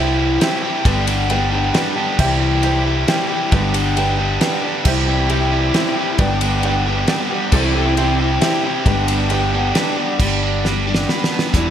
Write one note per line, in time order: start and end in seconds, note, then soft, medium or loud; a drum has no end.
0.00 0.37 C2 loud
0.00 0.40 E3 medium
0.00 0.20 G3 medium
0.00 0.19 E4 medium
0.00 0.18 G4 loud
0.00 0.35 G4 medium
0.00 0.35 C5 medium
0.00 0.35 E5 medium
0.00 0.35 G5 medium
0.19 0.42 G3 medium
0.19 0.42 E4 medium
0.19 0.43 G4 medium
0.40 0.84 C3 medium
0.40 0.85 E3 loud
0.40 0.65 G3 medium
0.40 0.64 E4 loud
0.40 0.79 G4 medium
0.40 0.63 G4 loud
0.40 0.80 C5 medium
0.40 0.80 E5 medium
0.40 0.80 G5 medium
0.40 snare medium
0.40 ride medium
0.63 0.86 G3 medium
0.63 0.85 E4 medium
0.63 0.87 G4 medium
0.84 1.70 G1 loud
0.84 1.29 G2 medium
0.84 1.30 D3 medium
0.84 1.09 G3 medium
0.84 1.08 B3 medium
0.84 1.07 D4 medium
0.84 1.24 G4 medium
0.84 1.07 G4 loud
0.84 1.24 B4 medium
0.84 1.24 D5 medium
0.84 1.24 G5 loud
0.84 kick loud
0.84 ride medium
1.07 1.29 G3 medium
1.07 1.29 B3 medium
1.07 1.30 D4 medium
1.07 1.31 G4 medium
1.07 ride medium
1.29 1.53 G3 medium
1.29 1.52 B3 medium
1.29 1.51 D4 medium
1.29 1.69 G4 medium
1.29 1.51 G4 medium
1.29 1.69 B4 medium
1.29 1.69 D5 medium
1.29 1.69 G5 medium
1.29 ride medium
1.51 1.74 G3 medium
1.51 1.74 B3 medium
1.51 1.74 D4 medium
1.51 1.75 G4 medium
1.73 2.17 G2 loud
1.73 2.17 D3 loud
1.73 1.98 G3 medium
1.73 1.97 B3 medium
1.73 1.96 D4 loud
1.73 2.13 G4 medium
1.73 1.96 G4 medium
1.73 2.13 B4 medium
1.73 2.14 D5 medium
1.73 2.13 G5 medium
1.73 snare medium
1.73 ride medium
1.96 2.19 G3 medium
1.96 2.18 B3 medium
1.96 2.18 D4 medium
1.96 2.20 G4 medium
1.96 2.17 A5 medium
2.18 3.04 C2 loud
2.18 2.63 C3 medium
2.18 2.61 E3 medium
2.18 2.42 G3 medium
2.18 2.40 E4 medium
2.18 2.57 G4 medium
2.18 2.40 G4 loud
2.18 2.57 C5 medium
2.18 2.58 E5 medium
2.18 2.58 G5 loud
2.18 kick loud
2.18 crash loud
2.40 2.63 G3 medium
2.40 2.63 E4 medium
2.40 2.65 G4 medium
2.62 3.07 E3 medium
2.62 2.87 G3 medium
2.62 2.85 E4 medium
2.62 3.02 G4 medium
2.62 2.85 G4 medium
2.62 3.02 C5 medium
2.62 3.02 E5 medium
2.62 3.02 G5 medium
2.62 ride medium
2.85 3.08 G3 medium
2.85 3.08 E4 medium
2.85 3.09 G4 medium
3.07 3.51 C3 medium
3.07 3.51 E3 medium
3.07 3.31 G3 loud
3.07 3.29 E4 medium
3.07 3.46 G4 medium
3.07 3.29 G4 loud
3.07 3.47 C5 medium
3.07 3.47 E5 medium
3.07 3.47 G5 medium
3.07 snare medium
3.07 ride medium
3.29 3.52 G3 medium
3.29 3.51 E4 medium
3.29 3.54 G4 medium
3.51 4.37 G1 loud
3.51 3.96 G2 medium
3.51 3.97 D3 medium
3.51 3.75 G3 medium
3.51 3.74 B3 loud
3.51 3.73 D4 medium
3.51 3.91 G4 medium
3.51 3.73 G4 loud
3.51 3.91 B4 medium
3.51 3.91 D5 medium
3.51 3.91 G5 loud
3.51 kick loud
3.51 ride medium
3.74 3.96 G3 medium
3.74 3.96 B3 medium
3.74 3.96 D4 medium
3.74 3.98 G4 medium
3.74 ride medium
3.96 4.20 G3 medium
3.96 4.19 B3 medium
3.96 4.18 D4 medium
3.96 4.35 G4 medium
3.96 4.18 G4 medium
3.96 4.35 B4 medium
3.96 4.36 D5 medium
3.96 4.36 G5 medium
3.96 ride medium
4.18 4.42 G3 medium
4.18 4.41 B3 medium
4.18 4.42 D4 medium
4.18 4.43 G4 medium
4.40 4.84 G2 medium
4.40 4.85 D3 medium
4.40 4.64 G3 loud
4.40 4.63 B3 loud
4.40 4.62 D4 medium
4.40 4.79 G4 medium
4.40 4.62 G4 loud
4.40 4.80 B4 medium
4.40 4.80 D5 medium
4.40 4.80 G5 medium
4.40 snare medium
4.40 ride medium
4.62 4.86 G3 medium
4.62 4.85 B3 medium
4.62 4.84 D4 medium
4.62 4.87 G4 medium
4.84 5.71 C2 loud
4.84 5.30 C3 medium
4.84 5.28 E3 loud
4.84 5.09 G3 loud
4.84 6.17 C4 medium
4.84 5.30 C4 loud
4.84 6.17 E4 medium
4.84 5.07 E4 loud
4.84 6.17 G4 medium
4.84 5.24 G4 medium
4.84 5.07 G4 medium
4.84 5.24 C5 medium
4.84 5.25 E5 medium
4.84 5.25 G5 loud
4.84 kick loud
4.84 crash loud
5.07 5.30 G3 medium
5.07 5.30 E4 medium
5.07 5.32 G4 medium
5.29 5.73 E3 medium
5.29 5.53 G3 medium
5.29 5.75 C4 medium
5.29 5.52 E4 medium
5.29 5.68 G4 medium
5.29 5.51 G4 medium
5.29 5.69 C5 medium
5.29 5.69 E5 medium
5.29 5.69 G5 medium
5.29 ride medium
5.52 5.75 G3 medium
5.52 5.74 E4 medium
5.52 5.76 G4 medium
5.74 6.17 C3 medium
5.74 6.18 E3 medium
5.74 5.98 G3 loud
5.74 6.20 C4 medium
5.74 5.96 E4 loud
5.74 6.13 G4 medium
5.74 5.96 G4 loud
5.74 6.13 C5 medium
5.74 6.13 E5 medium
5.74 6.14 G5 medium
5.74 snare medium
5.74 ride medium
5.96 6.20 G3 medium
5.96 6.18 E4 medium
5.96 6.21 G4 medium
6.18 7.04 G1 loud
6.18 6.63 G2 medium
6.18 6.64 D3 medium
6.18 6.44 G3 medium
6.18 7.51 B3 medium
6.18 6.42 B3 loud
6.18 7.51 D4 medium
6.18 6.41 D4 medium
6.18 6.58 G4 medium
6.18 7.51 G4 medium
6.18 6.41 G4 loud
6.18 6.58 B4 medium
6.18 6.58 D5 medium
6.18 6.58 G5 loud
6.18 kick loud
6.18 ride medium
6.41 6.63 G3 medium
6.41 6.64 B3 medium
6.41 6.64 D4 medium
6.41 6.66 G4 medium
6.41 ride medium
6.63 6.88 G3 medium
6.63 6.86 B3 medium
6.63 6.86 D4 medium
6.63 7.02 G4 medium
6.63 6.86 G4 medium
6.63 7.02 B4 medium
6.63 7.03 D5 medium
6.63 7.03 G5 medium
6.63 ride medium
6.86 7.09 G3 medium
6.86 7.09 B3 medium
6.86 7.09 D4 medium
6.86 7.10 G4 medium
7.08 7.51 G2 medium
7.08 7.51 D3 medium
7.08 7.32 G3 loud
7.08 7.30 B3 loud
7.08 7.30 D4 loud
7.08 7.47 G4 medium
7.08 7.30 G4 loud
7.08 7.47 B4 medium
7.08 7.47 D5 medium
7.08 7.47 G5 medium
7.08 snare medium
7.08 ride medium
7.30 7.52 G3 medium
7.30 7.52 B3 medium
7.30 7.52 D4 medium
7.30 7.54 G4 medium
7.52 8.38 C2 loud
7.52 7.97 C3 medium
7.52 7.95 E3 medium
7.52 7.97 G3 medium
7.52 8.85 C4 medium
7.52 7.76 C4 loud
7.52 8.85 E4 medium
7.52 7.76 E4 loud
7.52 8.84 G4 medium
7.52 7.91 G4 medium
7.52 7.75 G4 loud
7.52 7.64 A4 loud
7.52 7.92 C5 medium
7.52 7.92 E5 medium
7.52 7.92 G5 loud
7.52 kick loud
7.52 crash loud
7.64 7.75 E4 medium
7.75 7.97 C4 medium
7.75 7.99 E4 medium
7.75 8.00 G4 medium
7.75 7.86 A4 medium
7.86 7.97 E4 medium
7.96 8.19 E3 medium
7.96 8.42 G3 medium
7.96 8.19 C4 medium
7.96 8.21 C4 medium
7.96 8.20 E4 medium
7.96 8.36 G4 medium
7.96 8.36 C5 medium
7.96 8.36 E5 medium
7.96 8.36 G5 medium
7.96 ride medium
8.00 8.19 G4 medium
8.19 8.41 G3 soft
8.19 8.42 C4 medium
8.19 8.43 E4 medium
8.19 8.44 G4 medium
8.41 8.85 C3 medium
8.41 8.63 E3 medium
8.41 8.88 G3 loud
8.41 8.66 C4 medium
8.41 8.65 E4 loud
8.41 8.80 G4 medium
8.41 8.64 G4 loud
8.41 8.80 C5 medium
8.41 8.80 E5 medium
8.41 8.80 G5 medium
8.41 snare medium
8.41 ride medium
8.64 8.86 G3 soft
8.64 8.86 C4 medium
8.64 8.86 E4 medium
8.64 8.89 G4 medium
8.85 9.71 G1 loud
8.85 9.31 G2 medium
8.85 9.31 D3 medium
8.85 9.10 G3 medium
8.85 10.18 B3 medium
8.85 9.10 B3 loud
8.85 10.18 D4 medium
8.85 9.09 D4 loud
8.85 10.18 G4 medium
8.85 9.25 G4 medium
8.85 9.25 B4 medium
8.85 9.25 D5 medium
8.85 9.25 G5 loud
8.85 kick loud
8.85 ride medium
8.89 9.08 G4 medium
9.08 9.30 G3 medium
9.08 9.31 B3 medium
9.08 9.32 D4 medium
9.08 9.32 G4 medium
9.08 ride medium
9.30 9.54 G3 medium
9.30 9.54 B3 medium
9.30 9.53 D4 medium
9.30 9.69 G4 medium
9.30 9.52 G4 medium
9.30 9.70 B4 medium
9.30 9.70 D5 medium
9.30 9.70 G5 medium
9.30 ride medium
9.53 9.75 G3 medium
9.53 9.76 B3 medium
9.53 9.76 D4 medium
9.53 9.76 G4 medium
9.75 10.18 G2 medium
9.75 10.19 D3 medium
9.75 9.98 G3 loud
9.75 9.98 B3 medium
9.75 9.97 D4 medium
9.75 10.14 G4 medium
9.75 9.96 G4 loud
9.75 10.14 B4 medium
9.75 10.15 D5 medium
9.75 10.15 G5 loud
9.75 snare medium
9.75 ride medium
9.97 10.19 G3 medium
9.97 10.19 B3 medium
9.97 10.19 D4 medium
9.97 10.18 G4 medium
10.19 11.05 G1 medium
10.19 10.64 G2 medium
10.19 10.65 D3 medium
10.19 10.64 G3 medium
10.19 10.64 B3 medium
10.19 10.65 D4 medium
10.19 10.66 G4 medium
10.19 kick loud
10.19 crash loud
10.43 10.86 D4 medium
10.65 11.53 G3 medium
10.65 10.87 B3 medium
10.65 10.86 D4 medium
10.65 10.85 G4 medium
10.65 snare medium
10.86 11.07 G3 soft
10.86 11.08 B3 soft
10.86 11.54 D4 medium
10.86 11.09 G4 medium
10.95 snare medium
11.08 11.31 G3 medium
11.08 11.32 B3 medium
11.08 11.31 D4 medium
11.08 11.30 G4 medium
11.08 11.54 B4 medium
11.08 snare medium
11.24 snare medium
11.31 11.54 G3 soft
11.31 11.54 B3 medium
11.31 11.54 D4 soft
11.31 11.54 G4 soft
11.39 snare medium
11.53 11.70 E1 loud
11.53 11.70 E2 medium
11.53 11.70 B2 medium
11.53 11.70 E3 medium
11.53 11.70 G3 medium
11.53 11.70 B3 medium
11.53 11.70 D4 loud
11.53 11.70 E4 medium
11.53 11.70 G4 medium
11.53 kick loud
11.53 closed hi-hat medium